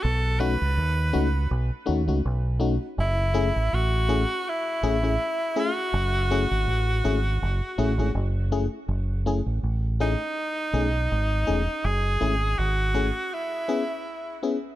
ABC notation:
X:1
M:4/4
L:1/16
Q:"Swing 16ths" 1/4=81
K:F#dor
V:1 name="Tenor saxophone"
A2 B6 z8 | E4 F4 E6 F2- | F12 z4 | z6 D8- D2 |
G4 F4 E6 z2 |]
V:2 name="FM electric piano"
z2 [A,CDF] z3 [A,CDF] z3 [A,CDF] [A,CDF] z2 [A,CDF] [DF] | z2 [A,CEG] z3 [A,CEG] z3 [A,CEG] [A,CEG] z2 [A,CEG] [EG] | z2 [A,CEG] z3 [A,CEG] z3 [A,CEG] [A,CEG] z2 [A,CEG] [EG] | z2 [A,CEG] z3 [A,CEG] z3 [A,CDG] z3 [A,CDG] z |
z2 [A,CEG] z3 [A,CEG] z3 [B,CEG] z3 [B,CEG] z |]
V:3 name="Fingered electric bass" clef=bass
B,,,3 C,, D,,2 C,,2 B,,, z D,, C,, B,,,3 z | F,,,3 A,,, A,,,3 z3 A,,,2 z4 | F,,,3 G,,, A,,,2 G,,,2 F,,, z A,,, G,,, F,,,3 z | F,,,3 A,,, A,,,3 z3 B,,,2 G,,,2 E,,, z |
F,,,2 G,,,2 G,,,3 z8 z |]